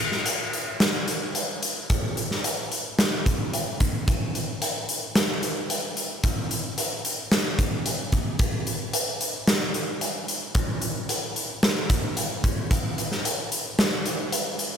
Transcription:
0.12 snare soft
0.26 closed hi-hat medium
0.53 closed hi-hat soft
0.80 snare medium
0.80 closed hi-hat medium
1.08 closed hi-hat medium
1.35 closed hi-hat medium
1.63 closed hi-hat medium
1.90 kick medium
1.90 closed hi-hat medium
2.17 closed hi-hat medium
2.31 snare soft
2.44 closed hi-hat medium
2.72 closed hi-hat medium
2.99 snare medium
2.99 closed hi-hat medium
3.26 kick medium
3.26 closed hi-hat medium
3.54 closed hi-hat medium
3.80 kick medium
3.80 closed hi-hat medium
4.08 kick medium
4.08 closed hi-hat medium
4.35 closed hi-hat medium
4.62 closed hi-hat medium
4.89 closed hi-hat medium
5.15 snare medium
5.15 closed hi-hat medium
5.43 closed hi-hat medium
5.70 closed hi-hat medium
5.97 closed hi-hat medium
6.24 kick medium
6.24 closed hi-hat medium
6.51 closed hi-hat medium
6.78 closed hi-hat medium
7.05 closed hi-hat medium
7.32 snare medium
7.32 closed hi-hat medium
7.59 kick medium
7.59 closed hi-hat medium
7.86 closed hi-hat medium
8.12 kick medium
8.12 closed hi-hat medium
8.39 kick loud
8.39 closed hi-hat medium
8.67 closed hi-hat medium
8.93 closed hi-hat medium
9.21 closed hi-hat medium
9.47 snare medium
9.47 closed hi-hat medium
9.74 closed hi-hat medium
10.01 closed hi-hat medium
10.28 closed hi-hat medium
10.55 kick loud
10.55 closed hi-hat medium
10.82 closed hi-hat medium
11.09 closed hi-hat medium
11.36 closed hi-hat medium
11.63 snare loud
11.63 closed hi-hat medium
11.90 kick medium
11.90 closed hi-hat medium
12.17 closed hi-hat medium
12.44 kick medium
12.44 closed hi-hat medium
12.71 kick loud
12.71 closed hi-hat medium
12.98 closed hi-hat medium
13.11 snare soft
13.25 closed hi-hat loud
13.52 closed hi-hat medium
13.79 snare loud
13.79 closed hi-hat medium
14.06 closed hi-hat medium
14.32 closed hi-hat medium
14.59 closed hi-hat medium

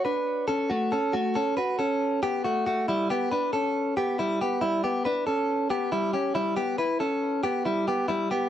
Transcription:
0.05 0.46 D4 medium
0.05 0.46 B4 medium
0.48 0.70 C#4 medium
0.48 0.70 A4 medium
0.70 0.92 A3 medium
0.70 0.92 F#4 medium
0.92 1.14 C#4 medium
0.92 1.14 A4 medium
1.13 1.36 A3 medium
1.13 1.35 F#4 medium
1.35 1.57 C#4 medium
1.35 1.56 A4 medium
1.57 1.79 F#4 medium
1.57 1.78 B4 medium
1.79 2.20 C#4 soft
1.79 2.20 A4 medium
2.23 2.45 B3 medium
2.23 2.44 G4 medium
2.44 2.66 A3 medium
2.44 2.65 F#4 medium
2.66 2.88 A3 medium
2.66 2.88 F#4 medium
2.88 3.10 G3 medium
2.88 3.10 E4 medium
3.10 3.32 B3 medium
3.10 3.31 G4 medium
3.32 3.53 D4 medium
3.32 3.53 B4 medium
3.53 3.94 C#4 soft
3.53 3.94 A4 medium
3.97 4.19 B3 medium
3.97 4.18 G4 medium
4.19 4.41 G3 medium
4.19 4.40 E4 medium
4.41 4.63 B3 medium
4.41 4.61 G4 medium
4.61 4.84 G3 medium
4.61 4.83 E4 medium
4.84 5.05 B3 medium
4.84 5.05 G4 medium
5.05 5.27 D4 medium
5.05 5.26 B4 medium
5.27 5.68 C#4 soft
5.27 5.68 A4 medium
5.70 5.92 B3 medium
5.70 5.92 G4 medium
5.92 6.14 G3 medium
5.92 6.13 E4 medium
6.13 6.36 C#4 medium
6.13 6.35 G4 medium
6.35 6.57 G3 medium
6.35 6.56 E4 medium
6.57 6.79 B3 medium
6.57 6.78 G4 medium
6.78 7.01 E4 medium
6.78 7.00 B4 medium
7.00 7.42 C#4 soft
7.00 7.41 A4 medium
7.43 7.66 B3 medium
7.43 7.65 G4 medium
7.65 7.88 G3 medium
7.65 7.87 E4 medium
7.88 8.10 B3 medium
7.88 8.08 G4 medium
8.08 8.31 G3 medium
8.08 8.31 E4 medium
8.31 8.49 B3 medium
8.31 8.49 G4 medium

